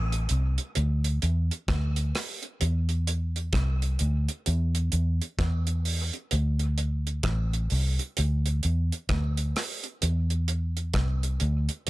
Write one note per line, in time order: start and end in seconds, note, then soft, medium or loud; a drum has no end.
0.00 0.27 A1 medium
0.12 closed hi-hat soft
0.29 0.57 C2 medium
0.29 closed hi-hat medium
0.58 closed hi-hat medium
0.75 1.20 D2 medium
0.75 closed hi-hat medium
1.04 closed hi-hat medium
1.22 1.49 E2 medium
1.22 closed hi-hat medium
1.51 closed hi-hat soft
1.68 2.12 D2 medium
1.68 kick loud
1.68 cross-stick loud
1.68 closed hi-hat medium
1.96 closed hi-hat medium
2.15 cross-stick medium
2.15 open hi-hat medium
2.43 closed hi-hat soft
2.61 3.50 E2 loud
2.61 closed hi-hat medium
2.89 closed hi-hat soft
3.07 closed hi-hat medium
3.36 closed hi-hat soft
3.53 3.97 C2 medium
3.53 kick loud
3.53 cross-stick loud
3.53 closed hi-hat loud
3.82 closed hi-hat soft
3.99 4.27 D2 medium
3.99 closed hi-hat medium
4.28 closed hi-hat medium
4.46 4.90 E2 medium
4.46 closed hi-hat medium
4.75 closed hi-hat medium
4.92 5.19 E2 medium
4.92 closed hi-hat medium
5.22 closed hi-hat soft
5.39 6.10 E2 medium
5.39 kick loud
5.39 cross-stick loud
5.39 closed hi-hat medium
5.67 closed hi-hat medium
5.85 open hi-hat medium
6.13 closed hi-hat soft
6.31 7.21 D2 loud
6.31 closed hi-hat medium
6.59 closed hi-hat soft
6.78 closed hi-hat medium
7.07 closed hi-hat soft
7.23 7.67 A1 medium
7.23 kick loud
7.23 cross-stick loud
7.23 closed hi-hat loud
7.53 closed hi-hat soft
7.70 7.98 C2 medium
7.70 open hi-hat soft
7.99 closed hi-hat medium
8.17 8.61 D2 medium
8.17 closed hi-hat medium
8.46 closed hi-hat medium
8.63 8.90 E2 medium
8.63 closed hi-hat medium
8.92 closed hi-hat soft
9.09 9.52 D2 medium
9.09 kick loud
9.09 cross-stick loud
9.09 closed hi-hat medium
9.37 closed hi-hat medium
9.56 cross-stick medium
9.56 open hi-hat medium
9.84 closed hi-hat soft
10.02 10.91 E2 medium
10.02 closed hi-hat medium
10.30 closed hi-hat soft
10.48 closed hi-hat medium
10.77 closed hi-hat soft
10.94 11.37 C2 medium
10.94 kick loud
10.94 cross-stick loud
10.94 closed hi-hat loud
11.23 closed hi-hat soft
11.40 11.68 D2 loud
11.40 closed hi-hat medium
11.69 closed hi-hat medium
11.87 closed hi-hat medium